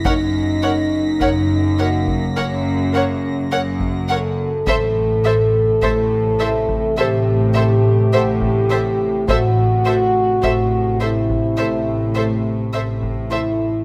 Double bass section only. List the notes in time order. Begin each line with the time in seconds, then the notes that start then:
0.06 F#1
1.22 F#1
2.38 F#1
3.52 F#1
4.67 A1
5.82 A1
6.98 A1
8.13 A1
9.28 A1
10.44 A1
11.60 A1
12.74 A1